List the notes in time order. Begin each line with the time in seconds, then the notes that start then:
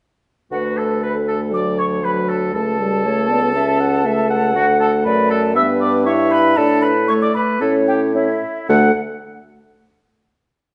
0.52 D2 A3 F#4 B4 F#5
0.77 A4 A5
1.03 A4 B4 B5
1.28 A4 A5
1.53 F#3 D5 D6
1.79 C#5 C#6
2.04 F#3 B4 B5
2.29 A4 A5
2.54 C#2 A3 A4 A5
2.80 G3
3.05 A3 C#5
3.30 B3 D5
3.55 C#4 E5
3.80 F#5
4.05 A3 E5
4.30 F#5
4.55 D2 A3 F#4 F#5
4.80 A4 A5
5.05 F#2 B4 D5 B5
5.30 A4 A5
5.55 G2 B3 B4 E5 E6
5.81 D5 D6
6.06 E4 C#5 E5 C#6
6.31 B4 B5
6.57 A2 D4 A4 D5 A5
6.82 B4 B5
7.08 A3 A4 C#5 C#6
7.22 D5 D6
7.34 B4 B5
7.61 A2 C#4 A4 C#5 A5
7.88 G4 G5
8.15 C#4 E4 C#5 E5
8.69 D2 A3 A4 F#5